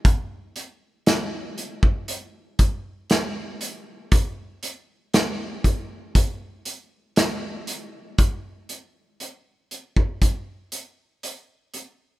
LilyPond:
\new DrumStaff \with { instrumentName = "Drums" } \drummode { \time 4/4 \tempo 4 = 59 <hh bd>8 hh8 <hh sn>8 hh16 bd16 hh8 <hh bd>8 <hh sn>8 hh8 | <hh bd>8 hh8 <hh sn>8 <hh bd>8 <hh bd>8 hh8 <hh sn>8 hh8 | <hh bd>8 hh8 hh8 hh16 bd16 <hh bd>8 hh8 hh8 hh8 | }